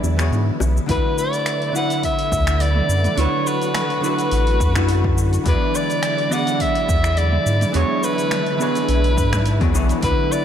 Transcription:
Already playing: D3 E3 F#3 G#3 B3 D4 E4 F#4 G#4 B4 D5
0.03 E2, high bongo, shaker
0.16 E3 B3 D4 F#4, finger snap, shaker
0.20 G#4 C#5
0.32 G#2, shaker
0.60 B1, high bongo, shaker
0.77 shaker
0.86 D2 D3 F#3 A3 B3 D4 E4 F#4 B4, kick, open hi-hat, shaker
0.91 B4
1.18 D5, shaker
1.33 open hi-hat, shaker
1.46 finger snap, open hi-hat, shaker
1.62 open hi-hat
1.72 D3 D4 E4 F#4 F#5, shaker
1.78 B4
1.90 open hi-hat, shaker
2.03 E5, kick, open hi-hat, shaker
2.19 open hi-hat
2.32 D2, kick, shaker
2.47 finger snap, shaker
2.60 D5, open hi-hat, shaker
2.76 mid tom
2.89 F#2, shaker
3.04 mid tom, open hi-hat, shaker
3.15 D2 D3 D4 E4 F#4 C#5, open hi-hat, shaker
3.20 B4
3.47 B4, shaker
3.61 open hi-hat, shaker
3.75 finger snap, mid tom, open hi-hat, shaker
3.90 open hi-hat
4.01 D3 D4 E4 F#4 B4, shaker
4.06 B4
4.18 open hi-hat, shaker
4.31 A1, open hi-hat, shaker
4.47 open hi-hat
4.60 F#2, kick, shaker
4.74 D3 D4 E4 F#4, finger snap, kick, shaker
4.79 B4
4.89 open hi-hat, shaker
5.04 kick
5.18 shaker
5.33 open hi-hat, shaker
5.44 E2 E3 G#3 B3 D4 E4 F#4 B4 D5, kick, open hi-hat, shaker
5.48 G#4 D5
5.75 D5, shaker
5.90 open hi-hat, shaker
6.03 finger snap, open hi-hat, shaker
6.18 open hi-hat
6.29 E3 B3 D4 F#4 F#5, shaker
6.33 G#4 D5
6.47 open hi-hat, shaker
6.60 E5, kick, open hi-hat, shaker
6.75 open hi-hat
6.89 E2, kick, shaker
7.04 finger snap, shaker
7.17 D5, open hi-hat, shaker
7.32 mid tom
7.46 G#2, shaker
7.61 mid tom, open hi-hat, shaker
7.72 E2 E3 B3 D4 F#4 C#5, open hi-hat, shaker
7.76 G#4 C#5
8.03 B4, shaker
8.18 open hi-hat, shaker
8.31 finger snap, mid tom, open hi-hat, shaker
8.46 open hi-hat
8.57 E3 B3 D4 F#4 B4, shaker
8.62 G#4 C#5
8.75 open hi-hat, shaker
8.88 B1, open hi-hat, shaker
9.04 open hi-hat
9.17 G#2, kick, shaker
9.33 finger snap, kick, mid tom, shaker
9.46 open hi-hat, shaker
9.60 E2 E3 B3 D4 F#4 G#4 C#5, kick, open hi-hat
9.73 B1 E3 B3 D4 F#4 G#4 C#5, shaker
9.89 open hi-hat, shaker
10.01 D2 D3 A3 B3 D4 E4 F#4 B4, kick, open hi-hat, shaker
10.06 B4
10.32 D5, shaker

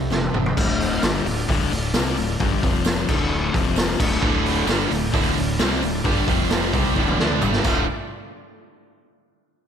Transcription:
0.00 C4 F4 A4
0.10 F1 F2 C3 F3 A3 C4 F4 A4, snare
0.24 B3, high tom
0.29 C4 D4
0.33 F1 F2 C3 E4, mid tom
0.38 F4 G4
0.44 F4 A4 B4, floor tom
0.49 C4 C5 D5
0.54 D1 D2 A2 D3 D4 F4 A4 D5 E5, kick, crash
0.80 open hi-hat
1.02 G1 G2 D3 G3, snare, open hi-hat, tambourine
1.25 D1 D2 A2, open hi-hat
1.49 D1 D2 A2 D3, kick, open hi-hat
1.70 D1 D2 A2, open hi-hat
1.93 C2 C3 G3 C4, snare, open hi-hat, tambourine
2.17 D1 D2 A2, open hi-hat
2.40 G1 G2 D3 G3, kick, open hi-hat
2.61 F1 F2 C3 F3 C4 F4 C5 F5, kick, open hi-hat
2.85 snare, open hi-hat, tambourine
3.06 D1 D2 A2 D3 D4 F4 A4 D5, kick, crash
3.53 F1 F2 C3 F3 C4 F4 C5 F5, kick, open hi-hat
3.76 snare, open hi-hat, tambourine
3.97 D1 D2 A2 D3 D4 F4 A4 D5, kick, crash
4.21 D1 D2 A2 D3, kick
4.46 open hi-hat
4.67 G1 G2 D3 G3, snare, open hi-hat, tambourine
4.91 D1 D2 A2, open hi-hat
5.12 D1 D2 A2 D3, kick, open hi-hat
5.37 D1 D2 A2, open hi-hat
5.59 C2 C3 G3 C4, snare, open hi-hat, tambourine
5.82 D1 D2 A2, open hi-hat
6.04 G1 G2 D3 G3, kick, open hi-hat
6.27 F1 F2 C3 F3 C4 F4 C5 F5, kick, open hi-hat
6.51 snare, open hi-hat, tambourine
6.73 C2 C3 G3 C4 D4 F4 A4 D5, kick, open hi-hat
6.96 D1 D2 A2 D3, kick
7.08 high tom
7.19 D2 D3 A3 D4, snare
7.31 mid tom
7.41 G1 G2 D3 G3, mid tom, tambourine
7.53 snare
7.64 D1 D2 A2 D3 A3 D4 F4 A4 D5, kick, crash, tambourine

